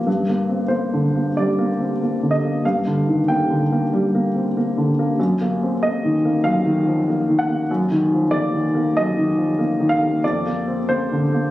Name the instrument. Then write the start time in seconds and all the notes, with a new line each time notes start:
upright piano
0.07 G2
0.29 A#3
0.50 C4
0.68 A#3 C5
0.93 D3
1.15 A#3
1.37 G3 D5
1.59 A#3
1.80 C4
2.02 A#3
2.23 D3
2.31 D#5
2.44 A#3
2.65 G2 F5
2.87 D3
3.07 D#3
3.28 A#3 G5
3.50 D3
3.72 A#3
3.93 G3
4.15 A#3
4.36 C4
4.57 A#3
4.78 D3
4.99 A#3
5.20 F#2
5.41 A#3
5.63 C4
5.83 A#3 D#5
6.04 D#3
6.25 A#3
6.44 F#2 F5
6.66 D#3
6.86 F3
7.09 A#3
7.30 D#3
7.39 F#5
7.49 A#3
7.71 F#2
7.91 D#3
8.13 F3
8.31 A#3 D5
8.53 D#3
8.75 A#3
8.97 F#2 D#5
9.18 D#3
9.37 F3
9.59 A#3
9.80 D#3
9.89 F5
10.02 A#3
10.24 F2 D5
10.46 A#3
10.68 C4
10.89 A#3 C5
11.12 D3
11.33 A#3